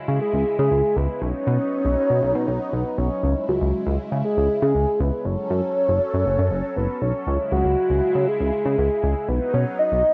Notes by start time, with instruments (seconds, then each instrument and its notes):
Already playing: analog synth pad C#3 G#3 E4
0.08 analog synth bass C#3
0.21 soft synth lead G#4
0.34 analog synth bass C#2
0.59 analog synth bass C#3, soft synth lead G#4
0.71 analog synth bass C#2
0.97 analog synth bass C#2, soft synth lead B4
1.22 analog synth bass B1, analog synth pad F#3 B3 D#4, soft synth lead C#5
1.47 analog synth bass B2
1.85 analog synth bass B1
2.10 analog synth bass B2
2.23 analog synth bass B1
2.35 analog synth bass B2
2.48 analog synth bass B1
2.73 analog synth bass B1, soft synth lead B4
2.98 analog synth bass B1, soft synth lead C#5
3.23 analog synth bass C#2, analog synth pad C#3 G#3 E4
3.49 analog synth bass C#2, soft synth lead F#4
3.61 analog synth bass C#2
3.86 analog synth bass C#2
4.12 analog synth bass C#3
4.24 soft synth lead G#4
4.37 analog synth bass C#2
4.62 analog synth bass C#3, soft synth lead G#4
4.75 analog synth bass C#2
5.00 analog synth bass C#2, soft synth lead B4
5.25 analog synth bass F#1, analog synth pad F#3 C#4 A4, soft synth lead C#5
5.50 analog synth bass F#2
5.88 analog synth bass F#1
6.13 analog synth bass F#2
6.26 analog synth bass F#1
6.39 analog synth bass F#2
6.51 analog synth bass F#1
6.76 analog synth bass F#1, soft synth lead B4
7.02 analog synth bass B1, soft synth lead C#5
7.27 analog synth bass C#2, analog synth pad C#3 G#3 E4
7.52 analog synth bass C#2, soft synth lead F#4
7.65 analog synth bass C#2
7.90 analog synth bass C#2
8.15 analog synth bass C#3
8.28 soft synth lead G#4
8.40 analog synth bass C#2
8.66 analog synth bass C#3
8.78 analog synth bass C#2, soft synth lead G#4
9.03 analog synth bass C#2
9.29 analog synth bass B1, analog synth pad F#3 B3 D#4, soft synth lead B4
9.54 analog synth bass B2, soft synth lead C#5
9.79 soft synth lead D#5
9.92 analog synth bass B1